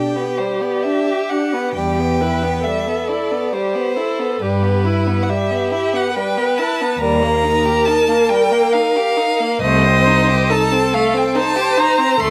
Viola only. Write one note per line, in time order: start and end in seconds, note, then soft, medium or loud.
0.00 1.75 G4 soft
1.76 2.22 G4 soft
2.21 2.64 B4 soft
2.65 3.51 A4 soft
3.54 3.97 G4 soft
3.97 4.43 A4 medium
4.42 4.87 G4 soft
4.86 5.30 E4 soft
5.29 6.15 G4 medium
6.15 7.02 B4 medium
7.01 9.61 A#4 medium
9.62 10.51 C5 medium
10.49 11.37 A4 medium
11.36 12.20 C5 medium
12.21 12.30 A4 medium